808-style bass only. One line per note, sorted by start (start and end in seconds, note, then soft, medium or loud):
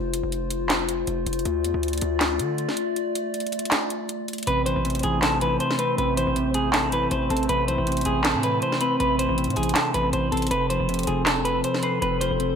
0.00 0.22 F1 loud
0.23 1.04 F1 loud
1.08 1.26 F1 loud
1.27 1.45 F1 loud
1.45 1.66 D2 loud
1.64 1.74 E2 loud
1.74 2.01 D2 loud
2.02 2.41 D2 loud
2.40 2.67 D3 loud
4.47 4.75 A1 loud
4.76 5.03 A1 loud
5.04 5.58 A1 loud
5.98 6.26 A1 loud
6.27 7.08 A1 loud
7.11 7.30 A1 loud
7.30 7.48 A1 loud
7.49 7.70 A1 loud
7.68 7.78 B1 loud
7.78 8.05 A1 loud
8.06 8.36 A1 loud
8.35 8.61 A2 loud
9.00 9.28 A1 loud
9.29 9.49 A1 loud
9.48 9.56 A2 loud
9.57 9.75 A1 loud
9.94 10.13 A1 loud
10.13 10.31 A1 loud
10.32 10.50 A1 loud
10.51 10.79 F1 loud
10.80 11.07 F1 loud
11.08 11.62 F1 loud
12.02 12.30 F1 loud
12.31 12.55 F1 loud